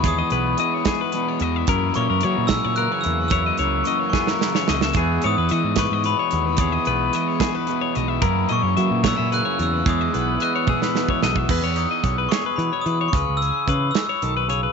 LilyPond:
<<
  \new Staff \with { instrumentName = "Glockenspiel" } { \time 6/8 \key e \lydian \tempo 4. = 73 dis'''2 r4 | r8 cis'''4 e'''8 fis'''8 e'''8 | e'''4 cis'''8 cis'''4 r8 | r8 dis'''4 cis'''8 b''4 |
dis'''2 r4 | r8 cis'''4 e'''8 fis'''8 e'''8 | dis'''4 fis'''8 e'''4 r8 | \key e \major r8 dis'''4 cis'''8 b''8 dis'''8 |
cis'''8 e'''4 e'''4 r8 | }
  \new Staff \with { instrumentName = "Clean electric guitar" } { \time 6/8 \key e \lydian cis''16 dis''16 b'8 dis''16 cis''16 gis'16 b'8 cis''16 dis''16 e''16 | ais'8 cis''16 ais'16 cis''8 ais'16 cis''16 ais'16 cis''8 b'16 | cis''16 dis''16 cis''8 dis''16 cis''16 gis'16 ais'8 cis''16 dis''16 e''16 | gis'8 cis''16 b'16 dis''8 b'16 dis''16 b'16 cis''8 b'16 |
cis''16 dis''16 b'8 dis''16 cis''16 gis'16 b'8 cis''16 dis''16 e''16 | ais'8 dis''16 cis''16 e''8 cis''16 e''16 b'16 cis''8 b'16 | cis''16 dis''16 b'8 dis''16 cis''16 gis'16 b'8 cis''16 dis''16 e''16 | \key e \major b'16 cis''8 dis''16 cis''16 b'16 cis''16 b'8 cis''16 b'16 cis''16 |
b'8 gis'8 b'8 gis'16 cis''16 a'16 b'16 cis''16 b'16 | }
  \new Staff \with { instrumentName = "Overdriven electric guitar" } { \time 6/8 \key e \lydian <e gis b e'>8 <gis b e'>8 <e gis b e'>8 <gis b e'>8 <e gis b e'>8 <gis b e'>8 | <fis, cis e ais e'>8 <e ais e'>8 <cis e ais e'>8 <e ais e'>8 <cis e ais e'>8 <e ais e'>8 | <fis, cis e ais e'>8 <e ais e'>8 <cis e ais e'>8 <e ais e'>8 <cis e ais e'>8 <e ais e'>8 | <e gis b e'>8 <gis b e'>8 <e gis b e'>8 <gis b e'>8 <e gis b e'>8 <gis b e'>8 |
<e gis b e'>8 <gis b e'>8 <e gis b e'>8 <gis b e'>8 <e gis b e'>8 <gis b e'>8 | <fis, cis e ais e'>8 <e ais e'>8 <cis e ais e'>8 <e ais e'>8 <cis e ais e'>8 <e ais e'>8 | <e gis b e'>8 <gis b e'>8 <e gis b e'>8 <gis b e'>8 <e gis b e'>8 <gis b e'>8 | \key e \major r2. |
r2. | }
  \new Staff \with { instrumentName = "Clean electric guitar" } { \clef bass \time 6/8 \key e \lydian << { gis'8 b2~ b8 | e'8 ais4 cis'4. | e'8 ais4 b16 cis'4~ cis'16 | <e b gis'>8 b2~ b8 |
gis'8 b2~ b8 | e'8 ais4 b16 cis'4~ cis'16 | gis'8 b2~ b8 | \key e \major r8 dis'4 gis'4. |
r8 cis'2~ cis'8 | } \\ { e,4 e4 b,4 | fis,4 fis4 cis4 | fis,4 fis4 cis4 | e,2 b,4 |
e,4 e4 b,4 | fis,4 fis4 cis4 | e,4 e4 b,4 | e,4 e4 b,4 |
cis4 e8 e8 dis8 cis8 | } >> }
  \new Staff \with { instrumentName = "Picked electric bass" } { \clef bass \time 6/8 \key e \lydian dis,8 b,,8 r4. e,8 | fis,8 ais,16 fis,16 fis16 ais,8 ais,8 r16 e,8~ | e,8 cis,8 r4. cis,8 | e,8 gis,16 e,16 e16 gis,8 gis,8 r16 dis,8~ |
dis,8 b,,8 r4. b,,8 | fis,8 ais,16 fis,16 fis16 ais,8 ais,8 r16 e,8 | e,8 b,,8 r4. b,,8 | \key e \major e,16 e,8 r16 b,,8 r8 e16 r16 e8 |
cis,16 cis,8 r16 cis8 r8 b,,4 | }
  \new DrumStaff \with { instrumentName = "Drums" } \drummode { \time 6/8 <hh bd>8 hh8 hh8 <hh bd sn>8 hh8 hh8 | <hh bd>8 hh8 hh8 <hh bd sn>8 hh8 hh8 | <hh bd>8 hh8 hh8 <bd sn>16 sn16 sn16 sn16 sn16 sn16 | <hh bd>8 hh8 hh8 <hh bd sn>8 hh8 hh8 |
<hh bd>8 hh8 hh8 <hh bd sn>8 hh8 hh8 | <hh bd>8 hh8 hh8 <hh bd sn>8 hh8 hh8 | <hh bd>8 hh8 hh8 <bd tommh>16 sn16 sn16 bd16 sn16 bd16 | <cymc bd>8 hh8 <hh bd>8 <hh sn>8 hh8 hh8 |
<hh bd>8 hh8 <hh bd>8 <hh sn>8 hh8 hh8 | }
>>